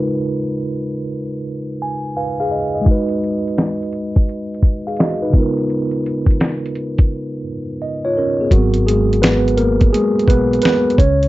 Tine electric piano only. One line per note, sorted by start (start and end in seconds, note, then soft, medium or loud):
0.00 2.45 C#3 medium
0.00 2.46 G#3 medium
0.00 2.47 D#4 medium
0.00 2.48 F4 medium
0.00 2.14 A#4 medium
0.00 2.15 B4 medium
1.82 2.14 G#5 medium
2.17 2.38 B4 soft
2.17 2.39 F5 medium
2.17 2.38 G#5 medium
2.40 2.73 G#4 medium
2.40 2.73 F5 medium
2.51 2.73 D#5 medium
2.74 3.08 D#5 medium
2.81 5.27 G#3 medium
2.81 4.58 D#4 medium
2.88 4.60 F#4 medium
2.88 4.62 B4 medium
4.87 4.98 G#4 soft
4.87 4.98 F5 medium
4.99 5.21 F#4 medium
4.99 5.21 D#5 medium
5.22 5.35 D#4 medium
5.22 5.55 B4 medium
5.30 8.10 C#3 medium
5.30 8.11 G#3 medium
5.30 7.41 B3 medium
5.36 7.42 D#4 medium
5.36 7.43 F4 medium
5.36 7.44 A#4 medium
7.82 8.03 D#5 soft
8.05 8.16 F4 medium
8.05 8.16 C#5 medium
8.17 8.39 C#4 soft
8.17 8.39 A#4 medium
8.41 8.52 B3 soft
8.41 8.73 G#4 medium
8.52 8.85 F#3 medium
8.52 9.23 B3 soft
8.52 9.54 F#4 medium
8.52 9.54 A#4 medium
8.87 9.20 G#3 medium
8.87 9.23 G#4 medium
9.22 9.56 B3 medium
9.22 9.58 B4 medium
9.57 9.91 A#3 medium
9.57 9.93 A#4 medium
9.93 10.10 G#3 medium
9.93 10.09 G#4 medium
10.28 10.62 B3 medium
10.28 10.62 B4 medium
10.63 10.97 B3 medium
10.63 10.99 B4 medium
10.98 11.28 C#4 medium
10.98 11.28 C#5 medium